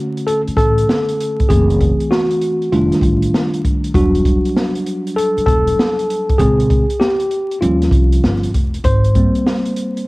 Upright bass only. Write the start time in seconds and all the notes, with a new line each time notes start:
0.47 muted upright bass stroke
0.56 A1
1.50 F#1
2.73 F1
2.93 muted upright bass stroke
3.02 A1
3.94 E1
5.37 muted upright bass stroke
5.46 E1
6.39 A#1
7.62 D#2
7.91 C2
8.23 G1
8.54 F1
8.84 G#1